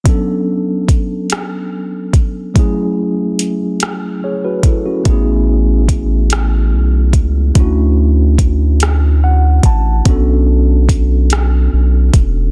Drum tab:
HH |x-xx-x|x-xx-x|x-xx-x|x-xx-x|
SD |---r--|---r--|---r--|---r--|
BD |o-o--o|o----o|o-o--o|o-o--o|

HH |x-xx-x|
SD |---r--|
BD |o-o--o|